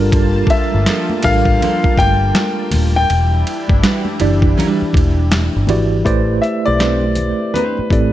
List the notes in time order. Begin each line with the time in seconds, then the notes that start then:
Already playing: G1 G3 A#3 D4 F4 A4 A#4 A5
0.12 kick, ride, muted conga
0.47 E5, kick, ride
0.72 G1, high conga
0.86 F3 A#3 D4 A4, snare, ride
1.10 muted conga, high conga
1.23 A1 G3 D4 F4 A4 A#4 F5, kick, ride, low conga
1.45 kick
1.61 F3 A#3 D4 A4, ride, muted conga, low conga
1.84 muted fingered electric bass stroke, kick, muted conga
1.98 G1 G5, kick, ride, high conga
2.35 snare, ride, muted conga, high conga
2.71 D#1, open hi-hat, ride, high conga, low conga
2.96 G5
3.08 E1 E3 G3 D4 E4, ride
3.32 muted conga
3.47 ride
3.68 G1, kick, high conga
3.83 G3 D4 F#4 B4, snare, ride
4.05 muted conga, high conga
4.20 F#1 E3 D4 E4 G4 D5, ride, low conga
4.42 kick
4.57 G3 D4 F#4 B4, ride, low conga
4.81 muted fingered electric bass stroke, muted conga
4.93 E1, kick, ride, high conga
5.31 snare, ride, high conga
5.53 G1, muted conga
5.67 G#1 E3 E4 F#4 G4 D5, ride, high conga, low conga
6.04 A1 A3 E4 G4 B4 C5 D5, kick, closed hi-hat, muted conga
6.42 E5, closed hi-hat
6.66 B1 A3 E4 G4 B4 C5 D5
6.74 E5
6.79 C4 D4 G4 B4, snare, closed hi-hat, muted conga
7.01 high conga
7.15 closed hi-hat, low conga
7.54 C4 D4 G4 B4, closed hi-hat, low conga
7.77 muted fingered electric bass stroke, muted conga
7.90 A1 A3 C4 E4 G4 A4 D5, kick, closed hi-hat, high conga